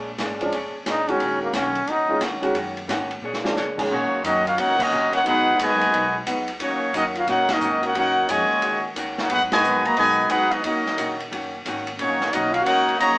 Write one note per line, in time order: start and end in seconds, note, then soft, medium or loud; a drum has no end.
0.00 0.17 A#1 medium
0.18 0.51 G#1 loud
0.18 0.42 A#2 medium
0.18 0.42 G#3 medium
0.18 0.42 C#4 medium
0.18 0.43 D4 medium
0.18 snare medium
0.18 hi-hat pedal medium
0.18 ride medium
0.41 0.52 F3 medium
0.41 0.52 G#3 medium
0.41 0.52 C#4 medium
0.41 0.52 D4 medium
0.41 ride medium
0.52 0.73 F1 medium
0.52 0.75 A#2 medium
0.52 0.76 G#3 medium
0.52 0.76 C#4 medium
0.52 0.76 D4 medium
0.52 ride medium
0.74 muted upright bass stroke soft
0.85 1.19 A1 medium
0.85 1.09 A#2 medium
0.85 1.09 G#3 medium
0.85 1.09 C#4 medium
0.85 1.10 D4 medium
0.85 snare medium
0.85 hi-hat pedal medium
0.85 ride medium
0.90 1.12 D#4 medium
1.08 1.52 D#3 medium
1.08 1.52 G#3 medium
1.08 1.52 C#4 medium
1.08 1.42 C#4 medium
1.08 1.52 F#4 medium
1.08 ride medium
1.20 1.52 A#1 loud
1.20 1.43 D#3 medium
1.20 1.44 A#3 soft
1.20 1.44 C#4 medium
1.20 1.44 F#4 medium
1.20 ride medium
1.42 1.57 A#3 medium
1.52 1.86 B1 loud
1.52 1.77 D#3 medium
1.52 1.77 A#3 medium
1.52 1.78 C#4 medium
1.52 1.92 C#4 medium
1.52 1.78 F#4 medium
1.52 snare medium
1.52 hi-hat pedal medium
1.52 ride medium
1.75 ride medium
1.86 2.20 C#2 medium
1.86 2.11 D#3 medium
1.86 2.11 A#3 medium
1.86 2.12 C#4 medium
1.86 ride medium
1.90 2.23 D#4 loud
1.90 2.12 F#4 medium
2.08 2.20 D#3 medium
2.08 2.20 G#3 medium
2.08 2.20 C#4 medium
2.08 2.20 F4 medium
2.20 2.54 D#2 medium
2.20 2.44 D#3 medium
2.20 2.44 A#3 medium
2.20 2.45 C#4 medium
2.20 2.45 F#4 medium
2.20 snare medium
2.20 hi-hat pedal medium
2.20 ride medium
2.42 2.53 D#3 medium
2.42 2.54 G#3 medium
2.42 2.54 C#4 medium
2.42 2.54 F#4 loud
2.42 ride medium
2.54 2.87 F#2 medium
2.54 2.78 D#3 medium
2.54 2.78 A#3 medium
2.54 2.79 C#4 medium
2.54 2.79 F#4 medium
2.54 ride medium
2.77 ride soft
2.88 3.21 G#2 loud
2.88 3.11 D#3 medium
2.88 3.12 A#3 medium
2.88 3.12 C#4 medium
2.88 3.12 F#4 medium
2.88 snare medium
2.88 hi-hat pedal medium
2.88 ride medium
3.11 ride medium
3.21 3.55 A#2 loud
3.21 3.46 A#3 medium
3.21 3.46 D4 medium
3.21 3.46 G#4 medium
3.21 3.47 C#5 medium
3.34 snare medium
3.44 3.55 F3 medium
3.44 3.55 G#3 medium
3.44 3.55 C#4 medium
3.44 3.56 D4 medium
3.44 snare medium
3.55 3.88 C#3 medium
3.55 3.79 A#3 medium
3.55 3.80 D4 medium
3.55 3.80 G#4 medium
3.55 3.80 C#5 medium
3.55 snare medium
3.55 hi-hat pedal medium
3.78 3.89 D#3 medium
3.78 3.89 G#3 medium
3.78 3.89 C#4 medium
3.78 3.89 G#4 medium
3.78 kick medium
3.78 crash medium
3.89 4.10 A#2 medium
3.89 4.13 D#3 soft
3.89 4.21 F#3 medium
3.89 4.22 A#3 medium
3.89 4.13 A#3 medium
3.89 4.22 A#3 medium
3.89 4.22 C#4 medium
3.89 4.14 C#4 medium
3.89 4.22 D#4 medium
3.89 4.22 F#4 medium
3.89 4.14 F#4 medium
3.89 4.22 C#5 medium
4.12 muted upright bass stroke soft
4.23 4.56 F#2 loud
4.23 4.48 D#3 medium
4.23 4.44 F#3 medium
4.23 4.44 A#3 medium
4.23 4.48 A#3 medium
4.23 4.45 C#4 medium
4.23 4.48 C#4 medium
4.23 4.44 D#4 medium
4.23 4.44 F#4 medium
4.23 4.48 F#4 medium
4.23 4.44 A#4 medium
4.23 4.45 D#5 loud
4.23 hi-hat pedal medium
4.23 ride medium
4.46 4.58 C#4 medium
4.46 4.57 F4 medium
4.46 4.57 F#4 medium
4.46 4.58 A#4 medium
4.46 4.58 F5 medium
4.46 ride medium
4.57 4.90 C#2 medium
4.57 4.81 D#3 soft
4.57 4.76 A#3 medium
4.57 4.81 A#3 medium
4.57 4.79 C#4 medium
4.57 4.81 C#4 medium
4.57 4.80 D#4 loud
4.57 4.79 F#4 medium
4.57 4.82 F#4 medium
4.57 4.80 A#4 loud
4.57 4.80 C#5 loud
4.57 4.80 F#5 loud
4.57 ride medium
4.77 5.12 F#3 medium
4.77 5.10 A#3 medium
4.77 5.12 D#4 medium
4.77 kick loud
4.77 crash loud
4.81 5.14 C#4 medium
4.81 5.14 F#4 medium
4.81 5.14 A#4 medium
4.81 5.14 D#5 loud
4.91 5.11 A#1 loud
4.91 5.14 D#3 medium
4.91 5.15 A#3 medium
4.91 5.15 C#4 medium
4.91 5.15 F#4 medium
4.91 hi-hat pedal medium
5.11 5.17 A#3 medium
5.11 5.17 C#4 medium
5.11 5.17 F#4 medium
5.11 muted upright bass stroke soft
5.11 ride medium
5.15 5.20 D#4 medium
5.15 5.20 A#4 medium
5.15 5.20 C#5 medium
5.15 5.21 F#5 loud
5.23 5.58 G#1 medium
5.23 5.49 G#2 medium
5.23 5.55 B3 loud
5.23 5.55 D#4 medium
5.23 5.56 F#4 medium
5.23 ride medium
5.27 5.49 F#3 medium
5.27 5.49 B3 medium
5.27 5.57 D#4 medium
5.27 5.50 D#4 medium
5.27 5.57 G#4 loud
5.27 5.58 B4 medium
5.27 5.57 F#5 loud
5.58 5.91 F#1 loud
5.58 5.82 G#2 medium
5.58 6.14 B2 medium
5.58 6.14 D#3 medium
5.58 5.82 F#3 medium
5.58 6.14 G#3 loud
5.58 5.82 B3 medium
5.58 5.82 D#4 medium
5.58 6.16 B4 loud
5.58 hi-hat pedal medium
5.58 ride medium
5.62 6.16 F#4 loud
5.62 6.16 D#5 loud
5.62 6.16 G#5 loud
5.81 ride medium
5.92 6.25 B1 loud
5.92 6.16 G#2 soft
5.92 6.16 F#3 medium
5.92 6.16 B3 medium
5.92 6.17 D#4 medium
5.92 ride medium
6.26 6.59 C#2 medium
6.26 6.49 G#2 medium
6.26 6.49 F#3 medium
6.26 6.49 B3 medium
6.26 6.50 D#4 medium
6.26 hi-hat pedal medium
6.26 ride medium
6.48 ride medium
6.60 6.92 D#2 loud
6.60 6.83 D#3 medium
6.60 6.92 F#3 medium
6.60 6.83 A#3 medium
6.60 6.92 A#3 medium
6.60 6.93 A#3 medium
6.60 6.83 C#4 medium
6.60 6.92 C#4 medium
6.60 6.93 D#4 medium
6.60 6.84 F#4 medium
6.60 6.93 F#4 medium
6.60 6.93 C#5 medium
6.60 ride medium
6.93 7.26 F#2 loud
6.93 7.17 D#3 medium
6.93 7.03 F#3 medium
6.93 7.03 A#3 medium
6.93 7.17 A#3 medium
6.93 7.17 C#4 medium
6.93 7.05 C#4 medium
6.93 7.03 D#4 medium
6.93 7.17 F#4 medium
6.93 7.05 F#4 medium
6.93 7.05 A#4 medium
6.93 7.05 D#5 loud
6.93 hi-hat pedal medium
6.93 ride medium
7.15 7.28 C#4 medium
7.15 7.26 F4 medium
7.15 7.27 F#4 medium
7.15 7.27 A#4 medium
7.15 7.28 F5 medium
7.15 ride medium
7.27 7.60 A#2 medium
7.27 7.50 D#3 medium
7.27 7.47 A#3 medium
7.27 7.50 A#3 medium
7.27 7.48 C#4 medium
7.27 7.51 C#4 medium
7.27 7.48 D#4 medium
7.27 7.47 F#4 medium
7.27 7.51 F#4 medium
7.27 7.48 A#4 medium
7.27 7.48 C#5 loud
7.27 7.48 F#5 loud
7.27 ride medium
7.49 7.83 F#3 medium
7.49 7.82 A#3 medium
7.49 7.83 C#4 medium
7.49 7.83 D#4 medium
7.49 7.83 F#4 medium
7.49 7.84 A#4 loud
7.49 7.84 D#5 loud
7.49 snare medium
7.49 ride medium
7.60 7.93 G#2 medium
7.60 7.84 D#3 medium
7.60 7.85 A#3 medium
7.60 7.85 C#4 medium
7.60 7.85 F#4 medium
7.60 hi-hat pedal medium
7.83 7.94 A#3 medium
7.83 7.94 C#4 medium
7.83 7.95 D#4 medium
7.83 7.93 F#4 medium
7.83 7.95 A#4 medium
7.83 7.95 C#5 medium
7.83 7.95 F#5 loud
7.83 ride medium
7.95 8.27 F#2 loud
7.95 8.18 D#3 medium
7.95 8.26 A#3 medium
7.95 8.18 A#3 medium
7.95 8.26 C#4 medium
7.95 8.19 C#4 medium
7.95 8.28 D#4 medium
7.95 8.26 F#4 loud
7.95 8.19 F#4 medium
7.95 8.28 A#4 medium
7.95 8.28 C#5 medium
7.95 8.28 F#5 loud
7.95 ride medium
8.29 8.49 F2 loud
8.29 8.84 A#2 medium
8.29 8.84 C#3 medium
8.29 8.52 D#3 medium
8.29 8.84 G#3 medium
8.29 8.52 A#3 medium
8.29 8.52 C#4 medium
8.29 8.52 F#4 medium
8.29 8.85 F#4 loud
8.29 8.85 C#5 medium
8.29 8.85 D#5 medium
8.29 8.85 G#5 loud
8.29 hi-hat pedal medium
8.29 ride medium
8.51 muted upright bass stroke soft
8.62 8.95 D#2 medium
8.62 8.85 D#3 medium
8.62 8.86 A#3 medium
8.62 8.86 C#4 medium
8.62 8.86 F#4 medium
8.62 ride medium
8.95 9.28 C#2 medium
8.95 9.19 D#3 medium
8.95 9.19 A#3 medium
8.95 9.19 C#4 medium
8.95 9.19 F#4 medium
8.95 hi-hat pedal medium
8.95 ride medium
9.18 9.30 A#3 medium
9.18 9.30 C#4 medium
9.18 9.30 D#4 medium
9.18 9.29 F#4 medium
9.18 9.30 A#4 medium
9.18 9.31 C#5 medium
9.18 9.31 F#5 medium
9.18 snare medium
9.28 9.62 G#1 medium
9.28 9.53 G#2 soft
9.28 9.53 F#3 medium
9.28 9.53 B3 medium
9.28 9.40 B3 medium
9.28 9.40 D#4 medium
9.28 9.53 D#4 medium
9.28 9.41 D#4 medium
9.28 9.40 F#4 medium
9.28 9.41 G#4 medium
9.28 9.41 B4 medium
9.28 9.41 F#5 loud
9.28 ride medium
9.52 9.83 B2 loud
9.52 9.83 D#3 medium
9.52 9.83 G#3 medium
9.52 9.83 F#4 medium
9.52 9.83 B4 loud
9.52 9.83 D#5 loud
9.52 9.83 G#5 loud
9.52 snare loud
9.52 ride medium
9.62 9.95 A#1 loud
9.62 9.86 G#2 medium
9.62 9.86 F#3 medium
9.62 9.86 B3 medium
9.62 9.87 D#4 medium
9.62 hi-hat pedal medium
9.85 9.97 A#3 medium
9.85 9.97 F#4 medium
9.85 9.96 B4 medium
9.85 9.96 D#5 medium
9.85 9.97 A#5 loud
9.85 ride medium
9.96 10.29 B1 loud
9.96 10.19 G#2 medium
9.96 10.28 B2 medium
9.96 10.28 D#3 loud
9.96 10.20 F#3 medium
9.96 10.29 G#3 loud
9.96 10.20 B3 medium
9.96 10.21 D#4 medium
9.96 10.29 F#4 loud
9.96 10.29 B4 loud
9.96 10.28 D#5 loud
9.96 10.28 G#5 loud
9.96 ride medium
10.29 10.63 C#2 medium
10.29 10.53 G#2 medium
10.29 10.53 F#3 medium
10.29 10.49 B3 medium
10.29 10.54 B3 medium
10.29 10.50 D#4 medium
10.29 10.52 D#4 medium
10.29 10.54 D#4 medium
10.29 10.52 F#4 medium
10.29 10.51 G#4 loud
10.29 10.52 B4 medium
10.29 10.52 F#5 loud
10.29 hi-hat pedal medium
10.29 ride medium
10.51 10.62 F#3 medium
10.51 10.63 B3 medium
10.51 10.64 B3 medium
10.51 10.62 D#4 medium
10.51 10.63 F#4 medium
10.51 10.64 G#4 medium
10.51 10.63 D#5 medium
10.51 ride medium
10.63 10.96 D#2 loud
10.63 10.87 D#3 medium
10.63 11.15 F#3 medium
10.63 11.15 A#3 medium
10.63 10.88 A#3 medium
10.63 11.16 C#4 medium
10.63 10.88 C#4 medium
10.63 11.15 D#4 medium
10.63 11.16 F#4 medium
10.63 10.88 F#4 medium
10.63 11.16 A#4 medium
10.63 11.16 D#5 medium
10.63 ride medium
10.86 snare medium
10.97 11.30 A#1 loud
10.97 11.20 D#3 medium
10.97 11.21 A#3 medium
10.97 11.21 C#4 medium
10.97 11.21 F#4 medium
10.97 hi-hat pedal medium
10.97 ride medium
11.20 ride medium
11.31 11.64 F#1 medium
11.31 11.54 D#3 medium
11.31 11.55 A#3 medium
11.31 11.55 C#4 medium
11.31 11.55 F#4 medium
11.31 ride medium
11.65 11.98 G#1 medium
11.65 11.89 D#3 medium
11.65 11.89 A#3 medium
11.65 11.89 C#4 medium
11.65 11.89 F#4 medium
11.65 hi-hat pedal medium
11.65 ride medium
11.87 ride medium
11.98 12.32 A#1 medium
11.98 12.23 D#3 medium
11.98 12.30 F#3 medium
11.98 12.30 A#3 medium
11.98 12.31 A#3 medium
11.98 12.23 A#3 medium
11.98 12.30 C#4 medium
11.98 12.31 D#4 medium
11.98 12.31 F#4 medium
11.98 12.31 C#5 loud
11.98 ride medium
12.02 12.24 C#4 medium
12.02 12.24 F#4 medium
12.21 snare medium
12.31 12.65 B1 loud
12.31 12.56 D#3 medium
12.31 12.54 F#3 medium
12.31 12.54 A#3 medium
12.31 12.56 A#3 medium
12.31 12.52 C#4 medium
12.31 12.57 C#4 medium
12.31 12.53 D#4 medium
12.31 12.52 F#4 loud
12.31 12.51 A#4 medium
12.31 12.54 D#5 loud
12.31 hi-hat pedal medium
12.31 ride medium
12.35 12.57 F#4 medium
12.51 12.66 C#4 medium
12.51 12.65 F4 medium
12.51 12.66 F#4 medium
12.51 12.64 A#4 medium
12.51 12.66 F5 loud
12.51 ride medium
12.62 12.96 A#3 medium
12.62 12.96 C#4 loud
12.62 12.97 D#4 loud
12.62 12.95 F#4 loud
12.62 12.97 A#4 loud
12.62 12.97 C#5 loud
12.62 12.97 F#5 loud
12.66 12.99 C#2 loud
12.66 12.90 D#3 soft
12.66 12.90 A#3 medium
12.66 12.91 C#4 medium
12.66 12.91 F#4 medium
12.66 ride medium
12.89 ride medium
12.97 13.18 D#2 medium
12.97 13.18 C#3 loud
12.97 13.18 D#3 medium
12.97 13.18 F#3 loud
12.97 13.18 A#3 loud
12.97 13.18 F#4 loud
12.97 13.18 C#5 loud
12.97 13.18 D#5 loud
12.97 13.18 A#5 loud
12.97 hi-hat pedal medium
12.97 ride medium
13.02 13.18 A#3 medium
13.02 13.18 C#4 medium
13.02 13.18 F#4 medium